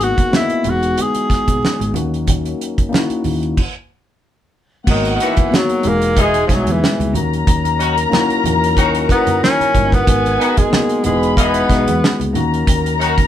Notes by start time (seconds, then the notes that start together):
Already playing: G#1 B2 C#3 G#3 A#3 B3 D#4 F#4 A#4
0.01 F#4, closed hi-hat
0.18 kick, closed hi-hat
0.31 A#3 B3 F#4 D#5, snare, muted conga, high conga
0.36 E4
0.50 muted fingered electric bass stroke, closed hi-hat, muted conga
0.63 E1 E3 G#3 B3 D#4 F#4 G#4, closed hi-hat, high conga, low conga
0.69 F#4
0.83 closed hi-hat
0.98 G#4, closed hi-hat, muted conga, high conga
1.14 closed hi-hat, muted conga
1.30 muted fingered electric bass stroke, kick, snare, closed hi-hat
1.48 B1, kick, closed hi-hat, high conga
1.62 muted fingered electric bass stroke, snare, muted conga
1.79 G#1, closed hi-hat, muted conga, high conga
1.93 D#2 D#3 F#3 A#3 C#4 D#4 F#4, closed hi-hat, high conga, low conga
2.14 closed hi-hat
2.27 kick, closed hi-hat, muted conga, low conga
2.45 closed hi-hat, muted conga
2.61 closed hi-hat
2.78 kick, closed hi-hat
2.89 A#3 C#4 D#4 E4, muted conga, high conga
2.94 snare
2.99 F#4
3.10 muted fingered electric bass stroke, closed hi-hat, muted conga
3.24 D#2, open hi-hat, high conga, low conga
3.43 closed hi-hat
3.57 kick, crash
4.84 G#1 B2 G#3 A#3 B3 D#4 F#4 A#4 F#5, kick, crash, muted conga
4.90 D#3
5.05 closed hi-hat
5.16 D#3
5.20 D#3 E3 B3 F#4, closed hi-hat
5.37 kick, closed hi-hat
5.50 A#3 B3 D#4, snare, high conga
5.54 F#3 F#4
5.69 closed hi-hat, muted conga
5.83 E1 B2 E3 G#3 D#4 F#4 G#4 G#5, closed hi-hat, high conga, low conga
5.88 A#3
6.02 closed hi-hat
6.16 E3 G#3 D#4 G#4, kick, closed hi-hat
6.34 closed hi-hat, muted conga
6.47 B1 F3 G3 B3 D#4, kick, closed hi-hat
6.51 F#3 G#3 F#4, snare
6.67 E2, closed hi-hat, high conga
6.71 E3
6.84 snare
6.99 C#2, closed hi-hat, muted conga, high conga
7.12 D#2 D#3 F#3 A#3 C#4 D#4 F#4 A#4 A#5, closed hi-hat, high conga, low conga
7.33 closed hi-hat
7.47 D#2, kick, closed hi-hat
7.65 closed hi-hat, muted conga
7.80 D#3 C#4 F#4, closed hi-hat
7.98 closed hi-hat
8.10 A#3 C#4 D#4 E4, snare, high conga
8.19 F#4
8.30 closed hi-hat, muted conga
8.44 E2, closed hi-hat, high conga, low conga
8.64 closed hi-hat
8.76 D#2 D#3 C#4 F#4, kick, closed hi-hat, muted conga
8.95 closed hi-hat
9.08 B3 C#4 D#4 E4 A#4, kick, closed hi-hat
9.18 F#4
9.27 F#2, closed hi-hat, high conga
9.43 C#4, snare, muted conga
9.61 closed hi-hat, muted conga, high conga
9.74 G1 C#4 C#5, kick, closed hi-hat, high conga, low conga
9.83 D#4 D#5
9.91 B3 E4 E5, kick, closed hi-hat
9.99 F#4 F#5
10.05 G#1 B2 G#3 B3 D#4 F#4 G#4 A#4 G#5, kick, closed hi-hat, muted conga
10.26 closed hi-hat, muted conga
10.39 D#3 B3 F#4, closed hi-hat
10.57 G#3, kick, closed hi-hat
10.70 A#3 B3 D#4, snare, muted conga, high conga
10.75 F#4
10.89 closed hi-hat
11.03 E1 E3 G#3 B3 D#4 E4 G#4 B4 B5, closed hi-hat, high conga, low conga
11.13 F#4
11.23 closed hi-hat
11.37 E3 B3 D#4 G#4, kick, closed hi-hat
11.54 closed hi-hat
11.68 B1 G#3 B3 D#4 F#4, kick, snare, closed hi-hat
11.88 E2, closed hi-hat, high conga
12.04 snare
12.20 C#2, closed hi-hat, muted conga, high conga
12.33 D#2 D#3 F#3 A#3 C#4 D#4 F#4 A#4 A#5, closed hi-hat, high conga, low conga
12.54 closed hi-hat
12.67 D#2, kick, closed hi-hat
12.86 closed hi-hat, muted conga
12.99 D#3 C#4 F#4, closed hi-hat
13.18 kick, closed hi-hat